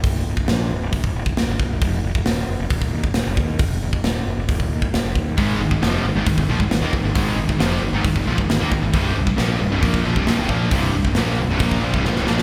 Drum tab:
HH |o---o---o---o---|o---o---o---o---|o---o---o---o---|o---o---o---o---|
SD |----o-------o---|----o-------o---|----o-------o---|----o-------o---|
BD |o--o----oo-o--o-|o--o----oo-o--o-|o--o----oo-o--o-|o--o----oo-o--o-|

HH |o---o---o---o---|o---o---o---o---|o---o---o-------|
SD |----o-------o---|----o-------o---|----o-------oooo|
BD |o--o----oo-o--o-|o--o----oo-o--o-|o--o----oo-o----|